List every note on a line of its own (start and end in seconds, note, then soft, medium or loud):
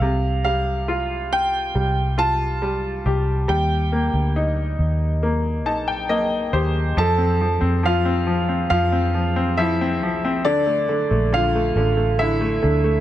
0.00 1.70 C2 medium
0.00 3.45 C3 medium
0.00 0.43 F5 medium
0.44 1.74 G3 soft
0.44 1.34 F5 medium
0.88 2.16 F4 medium
1.33 2.22 G5 loud
1.75 3.02 C2 medium
1.75 2.60 G3 soft
2.18 3.45 F4 soft
2.18 3.53 A5 loud
2.62 3.46 G3 medium
3.05 3.46 C2 medium
3.05 3.48 G4 medium
3.48 4.10 D#2 loud
3.48 6.92 G3 medium
3.48 4.32 G5 medium
3.92 5.21 A#3 medium
4.13 4.75 D2 medium
4.36 5.64 D#4 medium
4.79 5.66 D#2 medium
5.23 6.08 A#3 soft
5.66 6.49 A#1 medium
5.66 6.93 D#4 medium
5.66 5.87 A5 medium
5.88 6.08 G5 medium
6.09 6.94 A#3 medium
6.09 6.50 D#5 medium
6.53 6.94 D#2 medium
6.53 6.96 G4 medium
6.53 6.94 C5 medium
6.97 7.58 F2 loud
6.97 7.39 F3 medium
6.97 7.81 A4 medium
6.97 7.87 A5 medium
7.18 7.59 C4 soft
7.41 7.82 F3 soft
7.61 8.67 F2 medium
7.61 8.04 C4 medium
7.83 8.25 F3 medium
7.83 8.68 F4 medium
7.83 8.68 F5 medium
8.05 8.47 C4 medium
8.27 8.69 F3 medium
8.49 8.91 C4 soft
8.70 10.02 F2 loud
8.70 9.13 F3 medium
8.70 9.54 F4 medium
8.70 9.60 F5 medium
8.92 9.35 C4 medium
9.14 9.57 F3 soft
9.36 9.80 C4 medium
9.57 10.02 F3 medium
9.57 10.41 E4 medium
9.57 10.47 E5 medium
9.81 10.23 C4 medium
10.02 10.45 C2 medium
10.02 10.44 F3 medium
10.25 10.45 C4 medium
10.45 11.06 D2 loud
10.45 10.87 D3 medium
10.45 11.28 D4 medium
10.45 11.34 D5 medium
10.66 11.09 A3 soft
10.89 11.31 D3 medium
11.11 11.72 A#1 medium
11.11 11.54 A3 medium
11.32 11.75 D3 medium
11.32 12.16 F4 medium
11.32 12.22 F5 medium
11.55 11.95 A3 medium
11.75 12.58 A1 medium
11.75 12.17 D3 medium
11.97 12.39 A3 soft
12.19 12.61 D3 medium
12.19 13.00 E4 medium
12.19 13.00 E5 medium
12.41 12.82 A3 medium
12.62 13.00 D2 loud
12.62 13.00 D3 medium
12.84 13.00 A3 medium